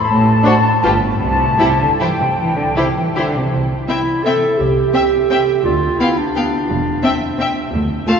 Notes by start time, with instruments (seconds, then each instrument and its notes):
0.08 double bass section A1, cello section A2, flute section A5
0.44 viola section D4, violin section F#4 C5
0.83 double bass section G1, cello section G2, viola section F4, violin section G4 B4
1.20 double bass section C2, cello section C3, flute section A5
1.59 cello section C3, viola section E4, violin section G4 C5
1.80 cello section D3
2.00 cello section E3, viola section E4, violin section G4 C5, flute section G5
2.20 cello section C3
2.38 double bass section C2, cello section E3
2.57 cello section D3
2.76 cello section C3, viola section E4, violin section G4 C5
2.96 cello section E3
3.16 cello section D3, viola section E4, violin section G4 C5
3.36 cello section C3
3.53 double bass section C2, cello section C3
3.88 viola section C4, clarinet E4, violin section E5 G5
4.24 viola section C4, clarinet A4, violin section E5 G5
4.58 double bass section C2, cello section C3, clarinet G4
4.94 viola section C4, violin section E5 G5
5.30 viola section C4, violin section E5 G5
5.64 double bass section D2, cello section D3, clarinet F4
5.99 viola section B3, clarinet E4, violin section F5 G5
6.18 clarinet D4
6.35 viola section B3, violin section F5 G5
6.70 double bass section E1, cello section E2
7.04 viola section C4, violin section E5 G5
7.39 viola section C4, violin section E5 G5
7.74 cello section D2, double bass section D2
8.07 viola section A3, clarinet F4, violin section F5 A5